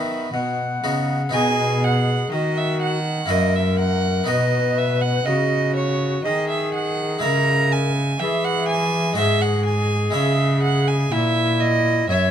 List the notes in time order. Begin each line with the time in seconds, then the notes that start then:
Already playing: D#3 B3 D#4 F#4 B4 E5
0.33 B2 F#5
0.84 C#3 B3 D#4 F#4
1.29 B3 D#4 F#4
1.33 B2 G#4 G#5
1.84 F#5
2.32 D#3 F#4 D#5
2.58 E5
2.82 F#5
3.26 A#3 E4 F#4
3.30 F#2 A#4 D#5
3.56 E5
3.79 F#5
4.24 B3 D#4 F#4 D#5
4.29 B2 B4
4.78 E5
5.02 F#5
5.26 C#3 F#4 D#5
5.76 C#5
6.25 D#3 G#4 D#5
6.49 E5
6.74 F#5
7.19 G#3 E4 C#5
7.23 C#3 A#4 A#5
7.72 G#5
8.19 E3 G#4 E5
8.44 F#5
8.68 G#5
9.13 G#3 F#4 C5
9.18 G#2 G#4 E5
9.41 F#5
9.65 G#5
10.10 G#3 E4 C#5 E5
10.15 C#3
10.62 F#5
10.87 G#5
11.11 A#2 E4 E5
11.60 D#5
12.09 F#2 C#5 E5